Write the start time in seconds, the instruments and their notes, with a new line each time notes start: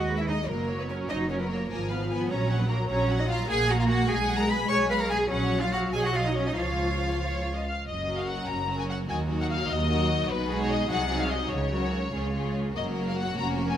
Already playing: double bass section D#2, viola section G#3, cello section F#4
0.09 violin section B4
0.17 cello section E4, violin section E5
0.27 cello section D#4, violin section D#5
0.48 double bass section F#1, viola section F#3, cello section A#3, violin section A#4
0.70 violin section C#5
0.79 cello section B3, violin section B4
0.89 cello section C#4, violin section A#4 C#5
1.09 double bass section F#1, cello section D#4, violin section C#5 D#5
1.29 cello section C#4, violin section A#4 C#5
1.39 cello section B3, violin section B4
1.49 cello section A#3, violin section A#4 C#5
1.69 double bass section G#1, viola section F3, cello section A#3, violin section A#4 G#5
1.89 cello section B3, violin section B4 F5
2.09 cello section B3, violin section B4 G#5
2.29 double bass section A#1, viola section F#3, cello section C#4, violin section C#5 A#5
2.50 violin section F#5
2.58 cello section B3, violin section B4
2.68 cello section A#3, violin section A#4 A#5
2.88 double bass section A#1, cello section C#4, violin section C#5 A#5
3.09 violin section F#5
3.19 cello section D#4, violin section D#5
3.28 cello section F4, violin section F5 A#5
3.48 double bass section A#1, viola section A#3, cello section G#4, violin section F#5 G#5
3.69 cello section F#4, violin section F#5 A#5
3.79 cello section F4, violin section F5
3.88 cello section F#4, violin section F#5
4.08 double bass section B1, viola section G#3, cello section G#4, violin section G#5
4.28 violin section F#5
4.39 cello section A#4, violin section A#5
4.48 cello section B4, violin section G#5 B5
4.69 double bass section B1, cello section C#5, violin section G#5 C#6
4.90 cello section B4, violin section F5 B5
5.00 cello section A#4, violin section A#5
5.10 cello section G#4, violin section G#5
5.30 double bass section A#1, viola section F#3, cello section C#4, violin section C#5 F#5
5.62 cello section F4, violin section F5
5.72 cello section F#4, violin section F#5
5.93 double bass section B1, cello section G#4, violin section D#5 G#5
6.04 cello section F#4, violin section F#5
6.14 cello section F4, violin section F5
6.25 cello section D#4, violin section D#5
6.35 cello section C#4, violin section C#5
6.46 cello section D#4, violin section D#5
6.57 double bass section C#2, viola section F3, cello section F4, violin section C#5 F5
7.23 violin section C#5
7.56 violin section D#5
7.66 violin section F5
7.86 double bass section F#1, cello section F#2, violin section D#5
8.06 viola section F#3 C#4, violin section F#4 A#4
8.18 violin section F5
8.28 violin section F#5
8.47 double bass section F#1, cello section F#2, violin section A#5
8.67 viola section F#3 C#4, violin section F#4 A#4
8.80 violin section G#5
8.89 violin section F#5
9.08 double bass section D#2, cello section D#2, viola section F#3 D#4, violin section F#4 A#4 G#5
9.27 viola section F#3 D#4, violin section F#4 A#4
9.41 violin section F#5
9.50 violin section F5
9.68 double bass section D#2, cello section D#2, violin section D#5
9.88 viola section F#3 D#4, violin section F#4 A#4
10.29 double bass section B1, cello section B2, violin section B4
10.48 viola section G#3 D#4, violin section F#4 G#4
10.62 violin section C#5
10.70 violin section D#5
10.89 double bass section C2, cello section C3, viola section F#3 D#4, violin section F#4 G#4 F#5
11.08 viola section F#3 D#4, violin section F#4 G#4
11.21 violin section F5
11.30 violin section D#5
11.50 double bass section C#2, cello section C#3, violin section C#5
11.71 viola section F#3 C#4, violin section F#4 A#4
12.13 double bass section C#2, cello section C#3, viola section G#3 C#4, violin section F4 G#4
12.33 viola section G#3 C#4, violin section F4 G#4
12.75 double bass section F#1, cello section F#2, viola section F#3 A#3, violin section F#4 A#4 D#5
13.08 violin section F5
13.18 violin section F#5
13.36 double bass section F1, cello section F2, viola section A#3 C#4, violin section A#4 A#5
13.69 violin section G#5